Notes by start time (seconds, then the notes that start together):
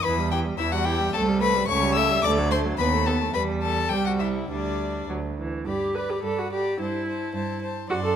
0.04 E2 E3 B4 B5
0.18 G3
0.31 E3 G4 G5
0.44 G3
0.58 E2 E3 E4 E5
0.72 G3 F#4 F#5
0.85 E3 G4 G5
1.00 G3
1.14 C2 A3 A4 A5
1.28 G3
1.41 A3 B4 B5
1.55 G3
1.68 C#2 A3 C#5 C#6
1.82 G3
1.95 A3 E5 E6
2.10 G3
2.23 D2 A3 D5 D6
2.38 F#3
2.51 A3 C5 C6
2.65 F#3
2.78 D#2 B3 B4 B5
2.93 A3
3.06 B3 A4 A5
3.21 A3
3.34 E2 G3 B4 B5
3.62 A4 A5
3.89 C2 G3 G4 G5
4.06 F#4 F#5
4.19 E4 E5
4.49 D2 G3 D4 D5
5.09 D2 F#3
5.39 E3
5.66 G2 G4 D5 B5
5.95 B4 D5 B5
6.10 G4
6.23 G2 A4 D5 B5
6.39 F#4
6.52 G4 D5 B5
6.79 G2 E4 C5 A5
7.08 C5 A5
7.34 G2 C5 A5
7.62 C5 A5
7.89 F#2 F#4 D5 C6
8.05 A4